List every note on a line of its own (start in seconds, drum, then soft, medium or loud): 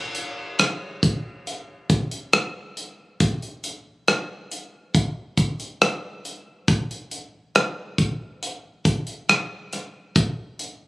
0.15 closed hi-hat medium
0.59 cross-stick medium
0.59 closed hi-hat medium
1.03 kick medium
1.03 closed hi-hat medium
1.47 closed hi-hat medium
1.90 kick medium
1.90 closed hi-hat medium
2.11 closed hi-hat soft
2.33 cross-stick loud
2.33 closed hi-hat medium
2.77 closed hi-hat medium
3.20 kick medium
3.20 closed hi-hat medium
3.42 closed hi-hat soft
3.64 closed hi-hat medium
4.08 cross-stick medium
4.08 closed hi-hat medium
4.52 closed hi-hat medium
4.95 kick medium
4.95 closed hi-hat medium
5.37 kick medium
5.37 closed hi-hat medium
5.60 closed hi-hat soft
5.82 cross-stick medium
5.82 closed hi-hat medium
6.25 closed hi-hat medium
6.68 kick loud
6.68 closed hi-hat medium
6.91 closed hi-hat soft
7.11 closed hi-hat medium
7.55 cross-stick medium
7.55 closed hi-hat medium
7.98 kick medium
7.98 closed hi-hat medium
8.43 closed hi-hat medium
8.85 kick medium
8.85 closed hi-hat medium
9.07 closed hi-hat soft
9.29 cross-stick medium
9.29 closed hi-hat medium
9.73 cross-stick soft
9.73 closed hi-hat medium
10.16 kick medium
10.16 closed hi-hat medium
10.59 closed hi-hat medium